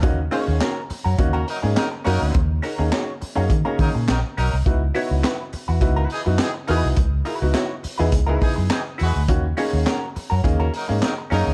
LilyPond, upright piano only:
\new Staff \with { instrumentName = "Upright piano" } { \time 4/4 \key dis \phrygian \tempo 4 = 104 <ais cis' dis' fis'>16 r16 <ais cis' dis' gis'>8. r8. <ais cis' dis' fis'>16 r8 <ais cis' dis' gis'>16 r8 <ais cis' dis' fis'>8 | r8 <dis' gis'>16 <ais cis' dis' gis'>8 r8 <ais cis' dis' gis'>16 r16 <ais cis' dis' gis'>8. r4 | <b dis' e' fis'>16 r16 <b dis' e' fis'>8. r8. <b dis' e' fis'>16 r8 <b dis' e' fis'>16 r8 <b dis' e' fis'>8 | r8 <e' gis'>16 <b dis' e' fis'>8 r8 <b dis' e' gis'>16 r16 <b dis' e' gis'>8. r4 |
<ais cis' dis' fis'>16 r16 <ais cis' dis' gis'>8. r8. <ais cis' dis' gis'>16 r8 <ais cis' dis' gis'>16 r8 <ais cis' dis' gis'>8 | }